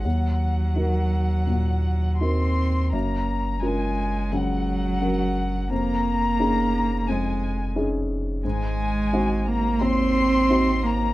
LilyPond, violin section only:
\new Staff \with { instrumentName = "Violin section" } { \time 4/4 \key des \major \tempo 4 = 87 ges''2. c'''4 | bes''4 aes''4 ges''2 | bes''2 aes''4 r4 | aes''4. bes''8 c'''4. bes''8 | }